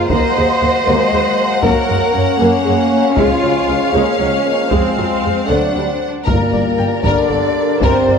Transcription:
0.00 0.87 A#3 medium
0.00 0.11 C5 soft
0.10 0.20 D#2 medium
0.10 3.13 F#3 medium
0.10 3.13 A#3 medium
0.10 0.36 A#3 medium
0.10 1.60 C5 medium
0.10 1.61 D#5 medium
0.10 3.14 F#5 medium
0.10 taiko medium
0.37 0.45 D#2 soft
0.37 0.45 G#3 soft
0.62 0.70 D#2 soft
0.62 0.71 A#3 soft
0.86 0.95 D#2 medium
0.86 1.61 G#3 medium
0.86 1.12 A#3 medium
1.13 1.21 D#2 soft
1.13 1.21 G#3 medium
1.63 1.71 F#2 medium
1.63 1.88 F#3 medium
1.63 1.87 A#3 medium
1.63 2.40 A#4 medium
1.63 4.67 C#5 medium
1.63 taiko medium
1.87 1.96 F#2 medium
1.87 1.97 G#3 soft
1.87 2.13 A#3 medium
2.12 2.22 F#2 soft
2.12 2.22 A#3 soft
2.12 3.93 C#4 medium
2.39 2.48 F#2 medium
2.39 2.63 A#3 medium
2.39 3.16 A#3 medium
2.64 2.74 F#2 soft
2.64 2.72 G#3 medium
3.17 3.26 C#2 medium
3.17 5.33 F3 medium
3.17 3.41 G#3 medium
3.17 5.33 G#3 medium
3.17 3.94 F4 medium
3.17 5.45 F5 medium
3.17 taiko medium
3.43 3.52 C#2 soft
3.43 3.51 F#3 soft
3.69 3.77 C#2 soft
3.69 3.77 G#3 medium
3.93 4.03 C#2 medium
3.93 4.17 G#3 medium
3.93 4.19 A#3 medium
3.93 4.70 C#4 medium
4.20 4.28 C#2 soft
4.20 4.28 F#3 soft
4.20 4.45 G#3 medium
4.45 4.70 A#3 medium
4.71 4.80 F2 medium
4.71 4.95 G#3 medium
4.71 5.47 G#3 medium
4.71 5.47 C4 medium
4.71 6.07 C5 soft
4.71 taiko medium
4.98 5.06 F2 soft
4.98 5.06 F#3 soft
5.23 5.31 F2 soft
5.23 5.32 G#3 soft
5.47 5.57 D2 medium
5.47 5.88 F#3 soft
5.47 6.02 F#3 soft
5.47 5.72 A3 medium
5.47 6.00 C4 soft
5.47 6.27 D4 medium
5.47 6.06 F#5 soft
5.75 5.83 D2 soft
5.75 5.84 G3 soft
6.26 6.35 G1 medium
6.26 7.00 G2 medium
6.26 6.36 G2 medium
6.26 7.01 A#2 medium
6.26 7.00 A#3 medium
6.26 8.19 A#3 medium
6.26 8.19 G4 medium
6.26 6.50 A#4 medium
6.26 7.01 A#4 medium
6.26 8.19 A#4 medium
6.26 8.19 D5 medium
6.26 taiko medium
6.53 6.61 G1 soft
6.53 6.61 G2 soft
6.53 6.61 D5 soft
6.78 6.87 G1 soft
6.78 6.86 G2 soft
6.78 6.86 G5 soft
7.04 7.12 G1 medium
7.04 7.12 G2 medium
7.04 7.79 D3 medium
7.04 7.82 D4 medium
7.04 7.28 A#4 medium
7.04 7.29 A#4 medium
7.04 7.81 D5 medium
7.04 taiko medium
7.30 7.39 G1 soft
7.30 7.38 G2 soft
7.30 7.55 A4 medium
7.30 7.39 D5 soft
7.56 7.81 A#4 medium
7.81 7.89 G1 medium
7.81 7.89 G2 medium
7.81 8.19 C3 medium
7.81 8.19 C4 medium
7.81 8.05 A#4 medium
7.81 8.07 C5 medium
7.81 8.19 C5 medium
7.81 taiko medium
8.06 8.15 G1 soft
8.06 8.15 G2 soft
8.06 8.19 A#4 medium
8.06 8.17 D5 soft

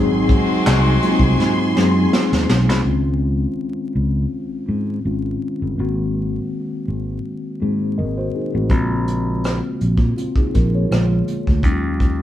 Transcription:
0.00 0.38 G#1 medium
0.00 0.92 F#3 medium
0.00 0.92 G#3 medium
0.00 0.92 C4 medium
0.00 2.44 C4 medium
0.00 0.93 D#4 medium
0.00 2.44 D#4 medium
0.00 2.44 F#4 medium
0.00 0.93 G#4 loud
0.00 2.82 G#4 medium
0.00 2.82 G#5 medium
0.00 2.82 C6 medium
0.29 kick loud
0.29 closed hi-hat medium
0.66 0.96 C2 medium
0.66 snare loud
0.66 clap medium
0.66 closed hi-hat medium
1.02 1.68 F#3 medium
1.02 1.69 G#3 medium
1.02 1.09 A#3 medium
1.02 1.69 D#4 medium
1.02 1.69 F4 medium
1.02 closed hi-hat medium
1.09 1.72 C4 medium
1.19 1.34 C2 medium
1.19 kick medium
1.39 1.76 G#2 medium
1.39 snare medium
1.75 2.05 F#2 medium
1.75 2.75 F#3 medium
1.75 2.75 G#3 medium
1.75 2.75 C4 medium
1.75 2.76 D#4 medium
1.75 2.76 G#4 medium
1.75 snare medium
2.13 snare medium
2.33 2.46 D#2 medium
2.33 snare medium
2.49 2.69 B1 medium
2.49 snare medium
2.69 2.82 C2 medium
2.69 snare medium
2.84 3.45 C#2 medium
2.84 5.00 D#3 medium
2.84 5.00 G#3 medium
2.84 5.01 C4 medium
2.84 5.01 C#4 medium
2.84 5.01 F4 medium
3.95 4.25 C#2 medium
4.69 4.98 G#2 medium
5.05 5.35 G#1 medium
5.05 5.76 D#3 soft
5.05 5.76 G#3 soft
5.05 5.78 C4 soft
5.05 5.78 C#4 soft
5.05 5.79 F4 soft
5.62 5.75 G1 medium
5.77 6.38 G#1 medium
5.77 7.56 D#3 medium
5.77 7.57 G#3 medium
5.77 7.57 A#3 medium
5.77 7.58 C4 soft
5.77 7.58 F#4 medium
6.88 7.17 G#1 medium
7.60 8.00 G#2 medium
7.60 8.70 D#3 soft
7.60 8.69 G#3 soft
7.60 8.69 A#3 soft
7.60 7.98 C4 soft
7.60 7.98 G#4 soft
7.98 8.28 G#1 medium
7.98 8.16 A#4 soft
7.98 8.16 D#5 soft
8.18 8.33 F#4 soft
8.18 8.33 C5 medium
8.35 8.53 D#4 soft
8.35 8.53 G#4 soft
8.55 8.70 A1 medium
8.55 8.70 C4 soft
8.55 8.89 F#4 medium
8.69 9.59 A#1 medium
8.69 10.85 C#3 medium
8.69 10.86 G#3 medium
8.69 10.86 A#3 medium
8.69 10.14 C4 medium
8.69 10.15 F4 medium
8.69 kick medium
8.69 closed hi-hat medium
9.08 closed hi-hat medium
9.44 cross-stick medium
9.44 closed hi-hat medium
9.81 9.97 A#1 medium
9.81 closed hi-hat soft
9.98 10.12 A#2 medium
9.98 kick medium
10.17 10.36 C4 soft
10.17 10.36 F4 medium
10.17 closed hi-hat medium
10.36 10.53 D#4 soft
10.36 10.53 G#4 medium
10.36 kick medium
10.54 10.84 A#1 medium
10.54 10.73 F4 soft
10.54 10.73 A#4 medium
10.54 kick medium
10.54 closed hi-hat medium
10.75 11.09 G#4 soft
10.75 11.09 C#5 medium
10.90 11.20 A#1 medium
10.90 11.63 D3 medium
10.90 11.63 G#3 medium
10.90 11.64 A#3 medium
10.90 11.64 B3 medium
10.90 11.64 F4 medium
10.90 cross-stick medium
10.90 closed hi-hat medium
11.28 closed hi-hat medium
11.47 11.64 D2 medium
11.47 kick medium
11.63 12.22 D#2 medium
11.63 12.22 D#3 medium
11.63 12.22 F#3 medium
11.63 12.22 G#3 medium
11.63 12.22 C#4 medium
11.63 11.71 D#4 medium
11.63 kick medium
11.63 closed hi-hat medium
11.72 12.22 F4 medium
12.00 kick medium
12.00 closed hi-hat medium

